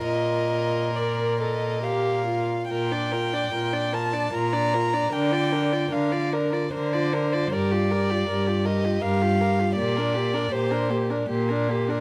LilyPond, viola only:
\new Staff \with { instrumentName = "Viola" } { \time 3/4 \key bes \major \tempo 4 = 76 f'4 bes'8 a'8 g'8 f'8 | f'16 d'16 f'16 d'16 f'16 d'16 f'16 d'16 f'16 d'16 f'16 d'16 | d'16 f'16 d'16 f'16 d'16 f'16 d'16 f'16 d'16 f'16 d'16 f'16 | g'16 f'16 g'16 f'16 g'16 f'16 g'16 f'16 g'16 f'16 g'16 f'16 |
bes16 d'16 bes16 d'16 bes16 d'16 bes16 d'16 bes16 d'16 bes16 d'16 | }